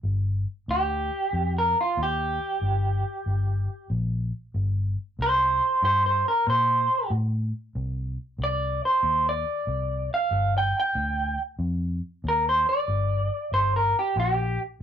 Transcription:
0.03 0.44 G1 medium
0.68 1.09 D2 medium
0.68 1.53 G4 loud
1.33 1.74 F2 medium
1.58 1.77 A#4 medium
1.81 1.99 F4 medium
1.97 2.38 D#2 medium
2.03 3.89 G4 medium
2.61 3.02 G1 medium
3.26 3.67 G1 medium
3.90 4.31 A#1 medium
4.54 4.95 G1 medium
5.19 5.59 C2 medium
5.19 5.83 C5 loud
5.83 6.23 G2 medium
5.83 6.05 C5 medium
6.06 6.26 C5 medium
6.28 6.48 A#4 medium
6.47 6.87 A#2 medium
6.47 7.11 C5 medium
7.10 7.51 A2 loud
7.75 8.16 C2 medium
8.38 8.79 C2 medium
8.44 8.83 D5 loud
8.85 9.25 C5 medium
9.03 9.44 D#2 medium
9.29 10.10 D5 medium
9.67 10.08 C2 medium
10.14 10.54 F5 medium
10.31 10.72 G1 medium
10.58 10.76 G5 medium
10.80 11.39 G5 loud
10.95 11.36 D2 medium
11.59 12.00 F2 medium
12.24 12.64 D#2 medium
12.28 12.47 A#4 medium
12.49 12.68 C5 medium
12.69 13.51 D5 medium
12.88 13.28 G1 medium
13.52 13.92 G1 medium
13.52 13.74 C5 medium
13.76 13.96 A#4 medium
13.99 14.18 G4 medium
14.16 14.56 A#1 medium
14.16 14.59 G4 loud

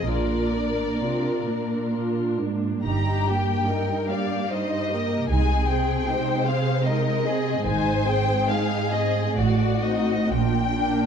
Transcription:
0.06 0.98 A#1 soft
0.06 0.90 A#2 soft
0.06 0.51 D4 soft
0.06 0.51 F4 soft
0.06 2.35 A#4 soft
0.06 1.94 D5 soft
0.54 1.02 A#3 soft
0.54 1.01 D4 soft
1.00 1.44 C3 soft
1.00 1.47 D4 soft
1.00 1.48 F4 soft
1.48 2.39 A#2 soft
1.48 1.94 A#3 soft
1.48 1.91 D4 soft
1.93 2.36 D4 soft
1.93 2.36 F4 soft
2.38 2.84 G#2 soft
2.38 2.84 A#3 soft
2.38 2.84 D4 soft
2.83 3.65 G1 soft
2.83 5.25 G2 soft
2.83 3.25 G3 soft
2.83 3.25 D#4 soft
2.83 3.65 G4 soft
2.83 3.24 A#5 medium
3.27 3.69 A#3 soft
3.27 3.69 G4 soft
3.27 4.09 G5 medium
3.68 4.09 G3 soft
3.68 4.09 D#4 soft
3.68 4.09 A#4 soft
4.09 4.49 A#3 soft
4.09 4.49 G4 soft
4.09 4.50 D5 soft
4.09 4.49 F5 soft
4.49 4.87 G3 soft
4.49 4.87 D#4 soft
4.49 4.90 C5 soft
4.49 5.29 D#5 medium
4.90 5.29 A#3 soft
4.90 5.29 G4 soft
4.90 5.29 A#4 soft
5.28 6.03 C2 soft
5.28 7.62 C3 soft
5.28 5.66 G#3 soft
5.28 5.66 D#4 soft
5.28 6.06 G#4 soft
5.28 5.67 G#5 medium
5.69 6.08 C4 soft
5.69 6.08 G#4 soft
5.69 6.47 G5 medium
6.08 6.46 G#3 soft
6.08 6.47 D#4 soft
6.08 6.86 C5 medium
6.46 6.85 C4 soft
6.46 6.85 G#4 soft
6.46 6.85 F5 medium
6.84 7.23 G#3 soft
6.84 7.22 D#4 soft
6.84 7.25 A#4 soft
6.84 7.66 D#5 medium
7.25 7.66 C4 soft
7.25 7.66 G#4 soft
7.65 8.46 G#1 medium
7.65 9.34 G#2 soft
7.65 8.05 G#3 soft
7.65 8.05 D#4 soft
7.65 8.48 C5 medium
7.65 8.07 G#5 medium
8.07 8.50 C4 soft
8.07 8.50 G#4 soft
8.07 8.50 G5 medium
8.49 8.93 G#3 soft
8.49 8.93 D#4 soft
8.49 9.37 G#4 medium
8.49 8.93 F5 medium
8.91 9.38 C4 soft
8.91 9.38 G#4 soft
8.91 9.37 D#5 medium
9.36 10.25 A1 soft
9.36 10.27 A2 soft
9.36 9.80 A3 soft
9.36 9.80 F#4 soft
9.36 10.30 F#4 soft
9.36 9.82 D5 soft
9.83 10.30 C4 soft
9.83 10.30 D#4 soft
9.83 10.30 D#5 soft
10.29 11.06 A#1 soft
10.29 11.06 A#2 soft
10.29 10.73 A#3 soft
10.29 11.06 D4 soft
10.29 10.73 F4 soft
10.29 11.06 G5 medium
10.77 11.06 D4 soft
10.77 11.06 A#4 soft

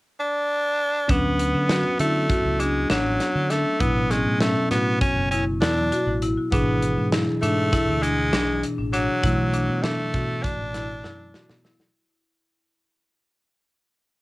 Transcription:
0.20 1.12 D4 loud
1.08 1.52 D2 medium
1.08 3.77 F#3 soft
1.08 2.00 B3 medium
1.08 3.77 B3 medium
1.08 3.76 C#4 medium
1.08 1.42 D4 medium
1.08 kick loud
1.08 closed hi-hat medium
1.39 closed hi-hat medium
1.54 1.83 D3 medium
1.69 1.86 F#4 medium
1.69 snare medium
1.69 closed hi-hat medium
1.99 2.28 D3 medium
1.99 2.62 A3 medium
1.99 2.16 E4 medium
1.99 closed hi-hat medium
2.29 2.46 F#4 medium
2.29 kick medium
2.29 closed hi-hat medium
2.45 2.88 C#2 medium
2.60 2.90 G#3 medium
2.60 2.76 D4 medium
2.60 closed hi-hat medium
2.90 3.19 A1 medium
2.90 3.52 F#3 medium
2.90 3.23 D4 medium
2.90 snare medium
2.90 closed hi-hat medium
3.20 snare soft
3.20 closed hi-hat medium
3.35 3.64 D3 medium
3.50 3.82 A3 medium
3.50 3.67 D4 medium
3.50 snare soft
3.50 closed hi-hat soft
3.79 4.23 A1 medium
3.79 6.47 B2 medium
3.79 6.48 F#3 medium
3.79 4.12 B3 medium
3.79 6.49 B3 medium
3.79 3.97 E4 medium
3.79 kick loud
3.79 closed hi-hat medium
4.10 4.40 G#3 medium
4.10 4.27 C#4 medium
4.10 snare soft
4.10 closed hi-hat medium
4.26 4.55 A2 medium
4.41 4.69 A3 medium
4.41 4.57 C#4 medium
4.41 snare medium
4.41 closed hi-hat medium
4.71 5.00 A2 medium
4.71 4.99 B3 medium
4.71 5.04 F#4 medium
4.71 snare soft
4.71 closed hi-hat medium
5.01 5.29 C#4 medium
5.01 kick medium
5.01 closed hi-hat medium
5.16 5.59 F#1 medium
5.31 5.45 C#4 medium
5.31 5.48 E4 medium
5.31 closed hi-hat soft
5.61 5.90 E2 medium
5.61 6.21 D4 medium
5.61 5.78 E4 medium
5.61 snare medium
5.61 closed hi-hat medium
5.92 6.08 F#4 medium
5.92 closed hi-hat medium
6.07 6.35 A1 medium
6.22 6.39 E4 medium
6.22 closed hi-hat medium
6.51 6.95 G#1 medium
6.51 9.19 B2 medium
6.51 9.20 E3 medium
6.51 7.08 B3 medium
6.51 6.85 D4 medium
6.51 9.20 G#4 medium
6.51 kick loud
6.51 closed hi-hat medium
6.82 closed hi-hat medium
6.97 7.26 G#2 medium
7.12 7.29 E4 medium
7.12 snare loud
7.12 closed hi-hat medium
7.42 7.71 G#2 medium
7.42 8.04 A3 medium
7.42 7.59 D4 medium
7.42 closed hi-hat medium
7.73 7.89 E4 medium
7.73 kick medium
7.73 snare soft
7.73 closed hi-hat medium
7.88 8.31 D2 medium
8.02 8.63 G#3 medium
8.02 8.19 D4 medium
8.02 closed hi-hat medium
8.33 8.62 B1 medium
8.33 8.66 D4 medium
8.33 snare medium
8.33 closed hi-hat medium
8.63 closed hi-hat medium
8.78 9.07 A1 medium
8.93 9.84 F#3 medium
8.93 9.10 D4 medium
8.93 closed hi-hat soft
9.23 9.67 B1 medium
9.23 11.91 B2 medium
9.23 11.91 E3 medium
9.23 11.92 A3 medium
9.23 9.40 E4 medium
9.23 kick loud
9.23 closed hi-hat medium
9.54 9.70 D4 medium
9.54 closed hi-hat medium
9.69 9.98 B2 medium
9.83 10.44 A3 medium
9.83 10.00 D4 medium
9.83 snare medium
9.83 closed hi-hat medium
10.14 10.43 B2 medium
10.14 10.47 F#4 medium
10.14 kick medium
10.14 closed hi-hat medium
10.43 11.64 D4 medium
10.43 kick loud
10.43 snare soft
10.43 closed hi-hat medium
10.60 11.02 A1 medium
10.74 10.91 E4 medium
10.74 snare soft
10.74 closed hi-hat medium
11.04 11.33 F#2 medium
11.04 11.21 E4 medium
11.04 snare soft
11.34 11.51 F#4 medium
11.34 snare medium
11.50 11.78 B2 medium
11.50 snare medium
11.64 11.81 E4 medium
11.64 snare medium
11.80 snare medium

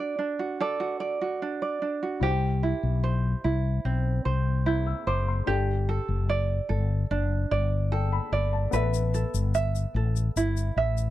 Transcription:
0.00 0.17 D4 medium
0.00 0.38 F#4 soft
0.00 0.59 A4 medium
0.00 0.60 D5 soft
0.19 1.41 D4 soft
0.39 0.79 F#4 soft
0.60 2.22 A4 medium
0.60 0.99 D5 medium
0.80 1.20 F#4 medium
1.00 1.61 D5 medium
1.21 2.01 F#4 soft
1.42 1.81 D4 medium
1.62 2.31 D5 soft
1.82 2.31 D4 soft
2.03 2.31 F#4 soft
2.20 2.72 C2 medium
2.20 5.43 E4 medium
2.20 5.47 G4 medium
2.20 5.44 C5 medium
2.20 5.45 G5 medium
2.63 3.43 E4 medium
2.83 3.33 B1 medium
3.04 4.24 C5 medium
3.44 3.78 C2 medium
3.44 4.65 E4 medium
3.85 4.18 B1 medium
3.85 5.47 C4 medium
4.25 4.92 C2 medium
4.25 5.06 C5 medium
4.66 5.56 E4 medium
4.66 4.86 G6 medium
4.87 5.06 E6 medium
5.07 5.40 F#1 medium
5.07 5.56 C5 medium
5.07 5.27 D6 medium
5.28 5.67 C6 medium
5.46 5.98 G1 medium
5.46 8.68 D4 medium
5.46 7.10 G4 medium
5.46 8.69 A4 medium
5.50 7.89 G5 medium
5.89 6.69 A4 medium
6.08 6.59 F#1 medium
6.29 7.50 D5 medium
6.69 7.03 G1 medium
6.69 7.92 A4 medium
7.10 7.44 F#1 medium
7.10 8.82 D4 medium
7.51 8.18 G1 medium
7.51 8.31 D5 medium
7.92 9.14 A4 medium
7.92 8.11 G5 medium
8.12 8.51 B5 medium
8.32 8.66 G1 medium
8.32 8.81 D5 medium
8.53 8.92 A5 medium
8.71 9.23 A1 medium
8.71 11.10 B3 medium
8.71 11.10 A4 medium
8.71 10.37 B4 medium
8.71 11.10 E5 medium
8.71 shaker medium
8.94 shaker soft
9.14 9.95 A4 medium
9.14 shaker soft
9.34 9.84 G1 medium
9.34 shaker medium
9.55 10.77 E5 medium
9.55 shaker medium
9.75 shaker soft
9.94 10.28 A1 medium
9.94 11.10 A4 medium
10.16 shaker soft
10.36 10.69 G1 medium
10.36 11.10 E4 medium
10.36 shaker medium
10.57 shaker soft
10.76 11.10 A1 medium
10.76 11.10 E5 medium
10.97 shaker soft

